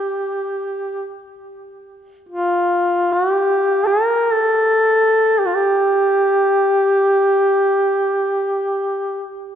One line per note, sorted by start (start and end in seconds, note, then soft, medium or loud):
0.00 1.11 G4 medium
2.29 3.14 F4 medium
3.12 3.31 F#4 medium
3.31 3.88 G4 medium
3.87 4.33 A#4 medium
4.31 5.40 A4 medium
5.39 5.47 G4 medium
5.46 5.57 F4 medium
5.55 9.26 G4 medium